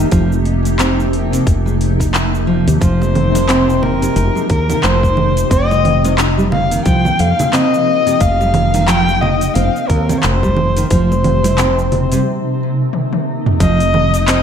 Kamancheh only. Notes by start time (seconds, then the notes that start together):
2.82 C5
3.82 A#4
4.50 A#4
4.84 C5
5.52 D#5
6.52 F5
6.85 G5
7.20 F5
7.54 D#5
8.20 F5
8.87 G5
9.21 D#5
9.54 F5
9.88 A#4
10.18 C5 C#5
10.89 C5
13.61 D#5
14.29 D#5